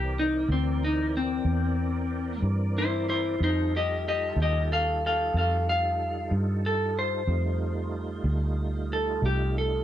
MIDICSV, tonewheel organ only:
0, 0, Header, 1, 2, 480
1, 0, Start_track
1, 0, Tempo, 646552
1, 2527, Time_signature, 12, 3, 24, 8
1, 7304, End_track
2, 0, Start_track
2, 0, Title_t, "Tonewheel organ"
2, 0, Program_c, 0, 16
2, 0, Note_on_c, 0, 52, 56
2, 0, Note_on_c, 0, 60, 53
2, 0, Note_on_c, 0, 70, 59
2, 0, Note_on_c, 0, 74, 57
2, 2493, Note_off_c, 0, 74, 0
2, 2494, Note_off_c, 0, 52, 0
2, 2494, Note_off_c, 0, 60, 0
2, 2495, Note_off_c, 0, 70, 0
2, 2514, Note_on_c, 0, 63, 55
2, 2514, Note_on_c, 0, 65, 55
2, 2516, Note_on_c, 0, 55, 56
2, 2520, Note_on_c, 0, 69, 59
2, 5372, Note_off_c, 0, 65, 0
2, 5373, Note_off_c, 0, 55, 0
2, 5373, Note_off_c, 0, 63, 0
2, 5376, Note_off_c, 0, 69, 0
2, 5402, Note_on_c, 0, 55, 56
2, 5405, Note_on_c, 0, 57, 61
2, 5405, Note_on_c, 0, 63, 54
2, 5405, Note_on_c, 0, 65, 56
2, 7304, Note_off_c, 0, 55, 0
2, 7304, Note_off_c, 0, 57, 0
2, 7304, Note_off_c, 0, 63, 0
2, 7304, Note_off_c, 0, 65, 0
2, 7304, End_track
0, 0, End_of_file